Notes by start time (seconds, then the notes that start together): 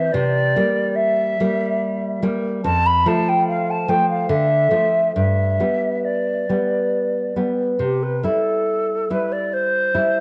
Already playing: E5
0.12 C3 D5
0.56 G3 A#3
0.95 E5
1.40 G3 A#3
2.22 G3 A#3
2.64 F2 A5
2.86 B5
3.06 F3 A3 A5
3.29 G5
3.48 F5
3.70 A5
3.88 F3 A3 G5
4.10 F5
4.29 D3 E5
4.71 F3 A3
5.16 G2 E5
5.60 G3 B3
6.05 D5
6.49 G3 B3
7.36 G3 B3
7.79 C3 G4
8.03 B4
8.23 G3 E4 A4
9.10 G3 E4 B4
9.32 D5
9.53 C5
9.94 G3 E4